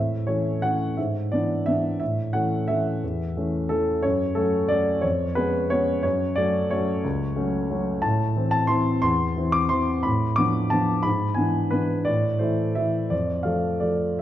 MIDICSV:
0, 0, Header, 1, 2, 480
1, 0, Start_track
1, 0, Key_signature, 3, "major"
1, 0, Tempo, 344234
1, 1351, Time_signature, 3, 2, 24, 8
1, 5167, Tempo, 333890
1, 11401, Key_signature, 0, "minor"
1, 16207, Tempo, 345423
1, 19087, Tempo, 372208
1, 20066, End_track
2, 0, Start_track
2, 0, Title_t, "Grand piano"
2, 0, Program_c, 0, 0
2, 0, Note_on_c, 0, 45, 38
2, 0, Note_on_c, 0, 76, 62
2, 165, Control_c, 0, 64, 127
2, 369, Note_off_c, 0, 45, 0
2, 373, Note_on_c, 0, 73, 58
2, 375, Note_off_c, 0, 76, 0
2, 390, Note_on_c, 0, 52, 28
2, 394, Note_on_c, 0, 57, 28
2, 402, Note_on_c, 0, 61, 30
2, 830, Note_off_c, 0, 52, 0
2, 832, Note_off_c, 0, 57, 0
2, 836, Note_off_c, 0, 61, 0
2, 868, Note_on_c, 0, 78, 69
2, 870, Note_off_c, 0, 73, 0
2, 886, Note_on_c, 0, 52, 29
2, 894, Note_on_c, 0, 57, 28
2, 901, Note_on_c, 0, 61, 34
2, 1310, Note_off_c, 0, 52, 0
2, 1315, Note_off_c, 0, 57, 0
2, 1319, Note_off_c, 0, 61, 0
2, 1348, Note_off_c, 0, 78, 0
2, 1353, Note_on_c, 0, 76, 48
2, 1375, Note_on_c, 0, 44, 37
2, 1376, Control_c, 0, 64, 0
2, 1566, Control_c, 0, 64, 127
2, 1825, Note_off_c, 0, 44, 0
2, 1828, Note_off_c, 0, 76, 0
2, 1835, Note_on_c, 0, 74, 59
2, 1846, Note_on_c, 0, 52, 29
2, 1853, Note_on_c, 0, 59, 29
2, 1860, Note_on_c, 0, 62, 31
2, 2279, Note_off_c, 0, 52, 0
2, 2283, Note_off_c, 0, 59, 0
2, 2286, Note_off_c, 0, 62, 0
2, 2313, Note_on_c, 0, 76, 66
2, 2321, Note_off_c, 0, 74, 0
2, 2332, Note_on_c, 0, 52, 29
2, 2336, Note_on_c, 0, 59, 32
2, 2350, Note_on_c, 0, 62, 32
2, 2754, Note_off_c, 0, 52, 0
2, 2757, Note_off_c, 0, 59, 0
2, 2763, Note_off_c, 0, 76, 0
2, 2764, Note_off_c, 0, 62, 0
2, 2784, Note_on_c, 0, 76, 60
2, 2808, Note_on_c, 0, 45, 36
2, 2818, Control_c, 0, 64, 0
2, 3011, Control_c, 0, 64, 127
2, 3250, Note_on_c, 0, 78, 67
2, 3255, Note_off_c, 0, 45, 0
2, 3256, Note_off_c, 0, 76, 0
2, 3270, Note_on_c, 0, 57, 30
2, 3271, Note_on_c, 0, 52, 31
2, 3273, Note_on_c, 0, 61, 35
2, 3699, Note_off_c, 0, 52, 0
2, 3699, Note_off_c, 0, 57, 0
2, 3701, Note_off_c, 0, 61, 0
2, 3731, Note_on_c, 0, 76, 66
2, 3737, Note_off_c, 0, 78, 0
2, 3751, Note_on_c, 0, 52, 31
2, 3754, Note_on_c, 0, 57, 29
2, 3756, Note_on_c, 0, 61, 29
2, 4174, Note_off_c, 0, 52, 0
2, 4176, Note_off_c, 0, 57, 0
2, 4177, Note_off_c, 0, 61, 0
2, 4235, Note_on_c, 0, 40, 38
2, 4239, Control_c, 0, 64, 0
2, 4454, Control_c, 0, 64, 127
2, 4680, Note_off_c, 0, 40, 0
2, 4695, Note_on_c, 0, 52, 30
2, 4698, Note_on_c, 0, 57, 31
2, 4703, Note_on_c, 0, 61, 35
2, 5123, Note_off_c, 0, 52, 0
2, 5125, Note_off_c, 0, 57, 0
2, 5128, Note_off_c, 0, 61, 0
2, 5147, Note_on_c, 0, 69, 66
2, 5160, Note_off_c, 0, 76, 0
2, 5167, Note_on_c, 0, 52, 30
2, 5169, Note_on_c, 0, 57, 30
2, 5176, Note_on_c, 0, 61, 33
2, 5600, Note_off_c, 0, 52, 0
2, 5602, Note_off_c, 0, 57, 0
2, 5605, Note_off_c, 0, 61, 0
2, 5627, Note_on_c, 0, 73, 63
2, 5638, Note_off_c, 0, 69, 0
2, 5654, Note_on_c, 0, 42, 42
2, 5674, Control_c, 0, 64, 0
2, 5876, Control_c, 0, 64, 127
2, 6093, Note_on_c, 0, 69, 61
2, 6108, Note_off_c, 0, 42, 0
2, 6108, Note_off_c, 0, 73, 0
2, 6123, Note_on_c, 0, 54, 33
2, 6126, Note_on_c, 0, 57, 36
2, 6127, Note_on_c, 0, 61, 37
2, 6560, Note_off_c, 0, 54, 0
2, 6561, Note_off_c, 0, 57, 0
2, 6562, Note_off_c, 0, 61, 0
2, 6575, Note_on_c, 0, 74, 77
2, 6594, Note_off_c, 0, 69, 0
2, 6595, Note_on_c, 0, 57, 31
2, 6596, Note_on_c, 0, 54, 37
2, 6604, Note_on_c, 0, 61, 40
2, 7040, Note_off_c, 0, 57, 0
2, 7041, Note_off_c, 0, 54, 0
2, 7045, Note_off_c, 0, 61, 0
2, 7049, Note_on_c, 0, 73, 61
2, 7077, Note_on_c, 0, 41, 43
2, 7079, Note_off_c, 0, 74, 0
2, 7118, Control_c, 0, 64, 0
2, 7368, Control_c, 0, 64, 127
2, 7536, Note_on_c, 0, 71, 70
2, 7551, Note_off_c, 0, 41, 0
2, 7552, Note_off_c, 0, 73, 0
2, 7559, Note_on_c, 0, 56, 31
2, 7565, Note_on_c, 0, 59, 35
2, 7568, Note_on_c, 0, 61, 37
2, 8006, Note_off_c, 0, 56, 0
2, 8009, Note_off_c, 0, 59, 0
2, 8011, Note_off_c, 0, 61, 0
2, 8036, Note_on_c, 0, 73, 78
2, 8044, Note_off_c, 0, 71, 0
2, 8062, Note_on_c, 0, 56, 37
2, 8065, Note_on_c, 0, 59, 35
2, 8066, Note_on_c, 0, 61, 38
2, 8484, Note_off_c, 0, 73, 0
2, 8489, Note_off_c, 0, 56, 0
2, 8491, Note_off_c, 0, 59, 0
2, 8491, Note_off_c, 0, 61, 0
2, 8505, Note_on_c, 0, 73, 67
2, 8529, Note_on_c, 0, 42, 47
2, 8565, Control_c, 0, 64, 0
2, 8771, Control_c, 0, 64, 127
2, 8977, Note_on_c, 0, 74, 74
2, 8990, Note_off_c, 0, 42, 0
2, 8992, Note_off_c, 0, 73, 0
2, 8999, Note_on_c, 0, 54, 33
2, 9004, Note_on_c, 0, 57, 36
2, 9014, Note_on_c, 0, 61, 36
2, 9444, Note_off_c, 0, 54, 0
2, 9447, Note_off_c, 0, 57, 0
2, 9452, Note_off_c, 0, 61, 0
2, 9479, Note_on_c, 0, 73, 65
2, 9482, Note_off_c, 0, 74, 0
2, 9501, Note_on_c, 0, 54, 39
2, 9502, Note_on_c, 0, 57, 38
2, 9517, Note_on_c, 0, 61, 39
2, 9927, Note_off_c, 0, 54, 0
2, 9928, Note_off_c, 0, 57, 0
2, 9936, Note_off_c, 0, 61, 0
2, 9966, Note_on_c, 0, 37, 47
2, 9995, Control_c, 0, 64, 0
2, 10196, Control_c, 0, 64, 127
2, 10422, Note_off_c, 0, 37, 0
2, 10424, Note_on_c, 0, 57, 34
2, 10425, Note_on_c, 0, 54, 40
2, 10435, Note_on_c, 0, 61, 41
2, 10869, Note_off_c, 0, 54, 0
2, 10869, Note_off_c, 0, 57, 0
2, 10875, Note_off_c, 0, 61, 0
2, 10912, Note_on_c, 0, 54, 37
2, 10917, Note_off_c, 0, 73, 0
2, 10923, Note_on_c, 0, 57, 34
2, 10926, Note_on_c, 0, 61, 43
2, 11345, Note_off_c, 0, 54, 0
2, 11351, Note_off_c, 0, 57, 0
2, 11353, Note_off_c, 0, 61, 0
2, 11366, Note_on_c, 0, 81, 75
2, 11381, Note_on_c, 0, 45, 53
2, 11429, Control_c, 0, 64, 0
2, 11619, Control_c, 0, 64, 127
2, 11842, Note_off_c, 0, 45, 0
2, 11860, Note_on_c, 0, 52, 38
2, 11870, Note_on_c, 0, 60, 36
2, 12053, Note_off_c, 0, 81, 0
2, 12075, Note_on_c, 0, 81, 82
2, 12298, Note_off_c, 0, 52, 0
2, 12303, Note_off_c, 0, 60, 0
2, 12308, Note_on_c, 0, 84, 79
2, 12328, Note_on_c, 0, 52, 37
2, 12335, Note_off_c, 0, 81, 0
2, 12336, Note_on_c, 0, 60, 43
2, 12778, Note_off_c, 0, 52, 0
2, 12782, Note_off_c, 0, 60, 0
2, 12782, Note_off_c, 0, 84, 0
2, 12803, Note_on_c, 0, 84, 80
2, 12821, Note_on_c, 0, 40, 48
2, 12864, Control_c, 0, 64, 0
2, 13120, Control_c, 0, 64, 127
2, 13293, Note_off_c, 0, 40, 0
2, 13304, Note_on_c, 0, 52, 38
2, 13309, Note_on_c, 0, 60, 37
2, 13531, Note_on_c, 0, 86, 83
2, 13544, Note_off_c, 0, 84, 0
2, 13754, Note_off_c, 0, 52, 0
2, 13756, Note_off_c, 0, 60, 0
2, 13770, Note_on_c, 0, 84, 73
2, 13791, Note_on_c, 0, 52, 36
2, 13793, Note_on_c, 0, 60, 36
2, 13795, Note_off_c, 0, 86, 0
2, 14237, Note_off_c, 0, 52, 0
2, 14239, Note_off_c, 0, 60, 0
2, 14258, Note_on_c, 0, 83, 72
2, 14276, Note_off_c, 0, 84, 0
2, 14286, Note_on_c, 0, 45, 44
2, 14323, Control_c, 0, 64, 0
2, 14543, Control_c, 0, 64, 127
2, 14732, Note_on_c, 0, 86, 84
2, 14753, Note_off_c, 0, 45, 0
2, 14753, Note_off_c, 0, 83, 0
2, 14757, Note_on_c, 0, 53, 31
2, 14761, Note_on_c, 0, 59, 34
2, 14764, Note_on_c, 0, 62, 39
2, 15201, Note_off_c, 0, 53, 0
2, 15204, Note_off_c, 0, 59, 0
2, 15205, Note_off_c, 0, 62, 0
2, 15224, Note_on_c, 0, 81, 76
2, 15238, Note_off_c, 0, 86, 0
2, 15242, Note_on_c, 0, 53, 36
2, 15251, Note_on_c, 0, 59, 35
2, 15254, Note_on_c, 0, 62, 34
2, 15678, Note_off_c, 0, 53, 0
2, 15683, Note_off_c, 0, 59, 0
2, 15685, Note_off_c, 0, 62, 0
2, 15691, Note_on_c, 0, 83, 77
2, 15714, Note_on_c, 0, 44, 43
2, 15717, Note_off_c, 0, 81, 0
2, 15760, Control_c, 0, 64, 0
2, 16008, Control_c, 0, 64, 127
2, 16149, Note_on_c, 0, 80, 62
2, 16178, Note_on_c, 0, 52, 38
2, 16181, Note_on_c, 0, 59, 35
2, 16182, Note_off_c, 0, 44, 0
2, 16185, Note_off_c, 0, 83, 0
2, 16187, Note_on_c, 0, 62, 39
2, 16627, Note_off_c, 0, 52, 0
2, 16629, Note_off_c, 0, 59, 0
2, 16632, Note_off_c, 0, 62, 0
2, 16653, Note_on_c, 0, 71, 66
2, 16663, Note_off_c, 0, 80, 0
2, 16669, Note_on_c, 0, 52, 31
2, 16674, Note_on_c, 0, 59, 34
2, 16685, Note_on_c, 0, 62, 36
2, 17108, Note_off_c, 0, 52, 0
2, 17111, Note_off_c, 0, 59, 0
2, 17117, Note_off_c, 0, 62, 0
2, 17127, Note_on_c, 0, 74, 71
2, 17146, Note_on_c, 0, 45, 44
2, 17149, Note_off_c, 0, 71, 0
2, 17195, Control_c, 0, 64, 0
2, 17414, Control_c, 0, 64, 127
2, 17602, Note_on_c, 0, 72, 50
2, 17618, Note_off_c, 0, 45, 0
2, 17620, Note_on_c, 0, 52, 32
2, 17622, Note_off_c, 0, 74, 0
2, 17625, Note_on_c, 0, 57, 31
2, 17635, Note_on_c, 0, 64, 39
2, 18079, Note_off_c, 0, 52, 0
2, 18082, Note_off_c, 0, 57, 0
2, 18087, Note_off_c, 0, 64, 0
2, 18107, Note_on_c, 0, 76, 64
2, 18121, Note_off_c, 0, 72, 0
2, 18132, Note_on_c, 0, 52, 34
2, 18133, Note_on_c, 0, 57, 29
2, 18140, Note_on_c, 0, 64, 34
2, 18562, Note_off_c, 0, 52, 0
2, 18563, Note_off_c, 0, 57, 0
2, 18567, Note_off_c, 0, 64, 0
2, 18592, Note_on_c, 0, 74, 60
2, 18597, Note_off_c, 0, 76, 0
2, 18605, Note_on_c, 0, 41, 38
2, 18643, Control_c, 0, 64, 0
2, 18828, Control_c, 0, 64, 127
2, 19050, Note_on_c, 0, 77, 54
2, 19067, Note_on_c, 0, 53, 31
2, 19068, Note_off_c, 0, 41, 0
2, 19076, Note_off_c, 0, 74, 0
2, 19077, Note_on_c, 0, 57, 30
2, 19077, Note_on_c, 0, 69, 30
2, 19504, Note_off_c, 0, 53, 0
2, 19509, Note_off_c, 0, 57, 0
2, 19509, Note_off_c, 0, 69, 0
2, 19528, Note_on_c, 0, 74, 51
2, 19544, Note_off_c, 0, 77, 0
2, 19549, Note_on_c, 0, 53, 28
2, 19553, Note_on_c, 0, 57, 30
2, 19555, Note_on_c, 0, 69, 32
2, 19992, Note_off_c, 0, 53, 0
2, 19994, Note_off_c, 0, 57, 0
2, 19995, Note_off_c, 0, 69, 0
2, 20031, Note_off_c, 0, 74, 0
2, 20066, End_track
0, 0, End_of_file